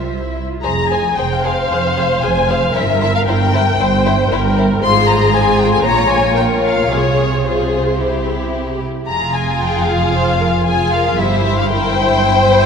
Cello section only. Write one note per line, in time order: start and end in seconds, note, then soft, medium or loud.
0.63 1.11 F2 medium
1.17 1.64 F2 soft
1.70 2.17 F2 medium
2.23 2.69 F2 medium
2.75 3.21 G2 medium
3.27 3.73 G2 medium
3.79 4.25 G2 medium
4.31 4.77 G2 medium
4.83 5.81 G#2 medium
5.85 6.91 A#2 medium
6.91 8.83 C3 soft
9.08 11.15 F2 medium
11.19 12.66 G2 medium